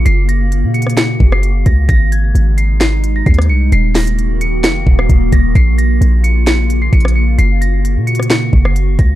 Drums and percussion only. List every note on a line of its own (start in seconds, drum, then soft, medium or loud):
0.06 closed hi-hat medium
0.29 closed hi-hat medium
0.52 closed hi-hat medium
0.74 closed hi-hat medium
0.82 closed hi-hat medium
0.87 cross-stick medium
0.87 closed hi-hat medium
0.97 snare loud
0.97 clap loud
0.97 closed hi-hat medium
1.20 kick loud
1.32 cross-stick medium
1.43 closed hi-hat medium
1.66 kick medium
1.66 closed hi-hat medium
1.89 kick loud
1.89 closed hi-hat medium
2.12 closed hi-hat medium
2.35 closed hi-hat medium
2.58 closed hi-hat medium
2.81 snare loud
2.81 clap medium
2.81 closed hi-hat medium
3.04 closed hi-hat medium
3.26 kick loud
3.26 closed hi-hat soft
3.34 closed hi-hat medium
3.38 cross-stick loud
3.38 closed hi-hat medium
3.72 closed hi-hat medium
3.95 snare medium
3.95 clap medium
3.95 closed hi-hat medium
3.95 open hi-hat medium
4.07 closed hi-hat medium
4.19 closed hi-hat medium
4.41 closed hi-hat medium
4.64 snare loud
4.64 clap medium
4.64 closed hi-hat medium
4.87 kick loud
4.99 cross-stick medium
5.09 kick loud
5.09 closed hi-hat medium
5.32 kick medium
5.32 closed hi-hat medium
5.55 kick loud
5.55 closed hi-hat medium
5.79 closed hi-hat medium
6.02 closed hi-hat medium
6.24 closed hi-hat medium
6.47 snare loud
6.47 clap loud
6.47 closed hi-hat medium
6.70 closed hi-hat medium
6.93 kick loud
6.93 closed hi-hat soft
7.00 closed hi-hat medium
7.05 cross-stick loud
7.05 closed hi-hat medium
7.39 closed hi-hat medium
7.62 closed hi-hat medium
7.85 closed hi-hat medium
8.07 closed hi-hat medium
8.15 closed hi-hat medium
8.19 cross-stick medium
8.19 closed hi-hat medium
8.30 snare loud
8.30 clap loud
8.30 closed hi-hat medium
8.53 kick loud
8.65 cross-stick medium
8.76 closed hi-hat medium
8.99 kick medium
8.99 closed hi-hat medium